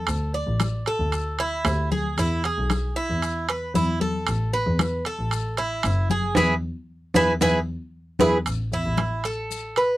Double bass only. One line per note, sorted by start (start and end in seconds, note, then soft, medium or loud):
0.08 0.33 D2 medium
0.47 0.72 A1 medium
0.99 1.62 D2 medium
1.65 2.15 D2 loud
2.18 2.43 E2 medium
2.58 2.83 B1 medium
3.09 3.72 E2 medium
3.75 4.25 E2 loud
4.27 4.52 A1 medium
4.66 4.91 E2 loud
5.18 5.81 A1 medium
5.84 6.34 F#1 loud
6.35 6.56 E2 loud
7.14 7.34 E2 loud
7.41 7.60 E2 loud
8.20 8.39 E2 loud
8.46 8.71 A1 medium
8.72 8.84 E2 medium
8.85 9.97 A1 medium